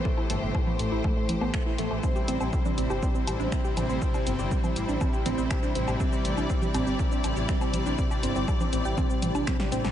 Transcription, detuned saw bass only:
\new Staff \with { instrumentName = "Detuned saw bass" } { \clef bass \time 4/4 \key c \major \tempo 4 = 121 r8 g,,16 g,,16 r8 a,,16 a,,16 r8 a,,16 a,,16 r8 a,,16 a,,16 | r8 a,,16 a,,16 r8 a,,16 g,,16 r8 a,,16 a,,16 r8 a,,16 a,,16 | r8 g,,16 g,,16 r8 a,,16 a,,16 r8 a,,16 a,,16 r8 a,,16 a,,16 | r8 a,,16 a,,16 r8 a,,16 g,,16 r8 a,,16 a,,16 r8 a,,16 a,,16 |
r8 g,,16 g,,16 r8 a,,16 a,,16 r8 a,,16 a,,16 r8 a,,16 a,,16 | }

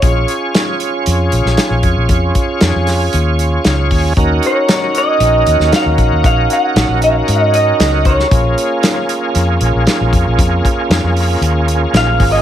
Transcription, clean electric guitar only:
\new Staff \with { instrumentName = "Clean electric guitar" } { \time 4/4 \key bes \minor \tempo 4 = 116 des''4. r2 r8 | r1 | r8 des''4 ees''4. f''4 | f''8 ges''4 f''4 ees''4 des''8~ |
des''4. r2 r8 | r2. \tuplet 3/2 { f''4 ees''8 } | }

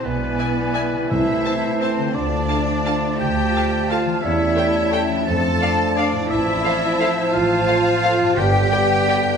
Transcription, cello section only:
\new Staff \with { instrumentName = "Cello section" } { \time 3/4 \key d \dorian \tempo 4 = 171 b2. | e'2 c'4 | d'2. | g'2 f'4 |
e'2. | a'2 d'4 | \key f \lydian e'2. | f'2. |
g'2. | }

